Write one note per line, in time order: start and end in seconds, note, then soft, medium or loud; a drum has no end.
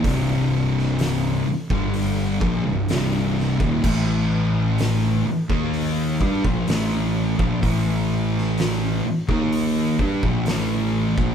0.04 1.43 C1 medium
0.04 1.45 C2 loud
0.04 1.46 G2 loud
0.04 1.46 C3 loud
0.04 kick loud
0.04 open hi-hat medium
0.78 snare soft
0.99 snare loud
0.99 open hi-hat medium
1.47 muted fingered electric bass stroke soft
1.47 muted distorted electric guitar stroke medium
1.70 2.38 G1 medium
1.70 2.41 G2 medium
1.70 2.41 D3 loud
1.70 2.41 G3 loud
1.70 kick loud
1.94 open hi-hat medium
2.41 2.64 A#1 loud
2.41 2.64 A#2 medium
2.41 2.64 F3 loud
2.41 kick loud
2.66 2.88 C1 medium
2.66 2.88 C2 medium
2.66 2.89 G2 medium
2.88 3.57 C1 loud
2.88 3.59 C2 loud
2.88 3.59 G2 loud
2.88 3.60 C3 loud
2.88 snare loud
2.88 open hi-hat medium
3.39 snare soft
3.60 3.82 D#1 loud
3.60 3.83 D#2 medium
3.60 3.84 A#2 loud
3.60 kick loud
3.84 5.22 A1 medium
3.84 5.25 A2 medium
3.84 5.25 E3 loud
3.84 5.26 A3 loud
3.84 kick loud
3.84 crash loud
4.78 snare loud
4.78 open hi-hat medium
5.27 muted fingered electric bass stroke soft
5.27 muted distorted electric guitar stroke medium
5.49 6.17 D#2 medium
5.49 6.19 D#3 medium
5.49 6.20 A#3 medium
5.49 6.20 D#4 loud
5.49 kick loud
5.74 open hi-hat medium
6.20 6.43 G2 loud
6.20 6.43 G3 loud
6.20 6.44 D4 loud
6.20 kick loud
6.45 6.67 A#1 loud
6.45 6.67 A#2 medium
6.45 6.68 F3 loud
6.45 kick loud
6.68 7.36 A1 loud
6.68 7.38 A2 loud
6.68 7.38 E3 loud
6.68 7.39 A3 loud
6.68 snare loud
6.68 open hi-hat medium
7.39 7.61 A#1 loud
7.39 7.62 A#2 medium
7.39 7.62 F3 loud
7.39 kick loud
7.62 9.01 A1 medium
7.62 9.03 A2 loud
7.62 9.03 E3 loud
7.62 9.04 A3 loud
7.62 kick loud
7.62 open hi-hat medium
8.37 snare soft
8.58 snare loud
8.58 open hi-hat medium
9.06 muted distorted electric guitar stroke medium
9.06 muted fingered electric bass stroke soft
9.28 9.96 D#2 loud
9.28 9.98 D#3 loud
9.28 9.99 A#3 medium
9.28 9.99 D#4 loud
9.28 kick loud
9.52 open hi-hat medium
9.99 10.22 G2 medium
9.99 10.22 G3 medium
9.99 10.23 D4 loud
9.99 kick loud
10.23 10.45 A#1 loud
10.23 10.46 A#2 medium
10.23 10.47 F3 loud
10.23 kick loud
10.46 11.14 A1 loud
10.46 11.17 A2 medium
10.46 11.17 E3 loud
10.46 11.18 A3 loud
10.46 snare loud
10.46 open hi-hat medium
11.18 11.35 A#1 loud
11.18 11.35 A#2 medium
11.18 11.35 F3 loud
11.18 kick loud